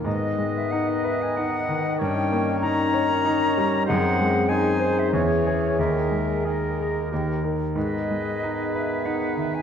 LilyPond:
<<
  \new Staff \with { instrumentName = "Flute" } { \time 3/4 \key gis \minor \tempo 4 = 93 dis''8. e''16 fis''16 dis''16 e''16 gis''16 fis''4 | g''4 ais''2 | fis''4 gis''8. e''16 cis''4 | e''4 dis''4 r4 |
dis''4. e''8 fis''8 e''16 gis''16 | }
  \new Staff \with { instrumentName = "Oboe" } { \time 3/4 \key gis \minor dis''2. | cis''2. | bis'4 bis'4 cis''4 | ais'4 ais'4 ais'8 r8 |
b'2. | }
  \new Staff \with { instrumentName = "Clarinet" } { \time 3/4 \key gis \minor b'2. | ais'2. | gis'4 gis'4 gis'4 | gis'4 gis'4 g'8 r8 |
gis'2. | }
  \new Staff \with { instrumentName = "Grand piano" } { \time 3/4 \key gis \minor gis,8 gis8 dis'8 b'8 dis'8 dis8 | g,8 ais8 dis'8 cis''8 dis'8 g8 | fis,8 gis8 dis'8 bis'8 e,8 <gis' cis''>8 | dis,8 gis8 gis'8 ais'8 dis,8 <dis' ais'>8 |
gis,8 gis8 dis'8 b'8 dis'8 dis8 | }
  \new Staff \with { instrumentName = "French horn section" } { \time 3/4 \key gis \minor << { dis'2.~ | dis'2. | gis'2.~ | gis'2 g'8 r8 |
dis'2. | } \\ { b2. | cis'2. | bis2 cis'4 | ais2~ ais8 r8 |
b2. | } >> }
  \new Staff \with { instrumentName = "Bassoon" } { \clef bass \time 3/4 \key gis \minor dis2.~ | dis2. | dis4 dis4 e4 | dis4 dis4 dis8 r8 |
dis2. | }
>>